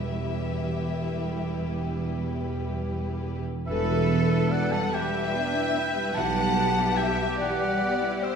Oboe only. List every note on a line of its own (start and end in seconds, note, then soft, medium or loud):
3.67 4.53 E5 medium
4.52 4.73 F#5 medium
4.72 4.95 A5 medium
4.94 6.16 G5 medium
6.15 6.99 A5 loud
6.97 7.39 G5 medium
7.41 8.25 F#5 loud
8.23 8.36 E5 medium